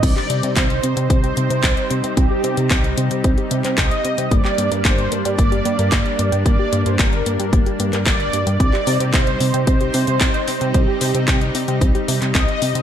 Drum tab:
CC |x---------------|----------------|----------------|----------------|
HH |x-xxxxxxxxxxxxxx|x-xxxxxxxxxxxxxx|x-xxxxxxxxxxxxxx|x-xxxxxxxxxxxxxx|
CP |-x--x-------x---|----x------xx---|-x--x-------x---|----x------xx---|
BD |o---o---o---o---|o---o---o---o---|o---o---o---o---|o---o---o---o---|

CC |----------------|----------------|
HH |x-oxxxoxxxoxxxox|x-oxxxoxxxoxxxox|
CP |-x--x-------x---|----x------xx---|
BD |o---o---o---o---|o---o---o---o---|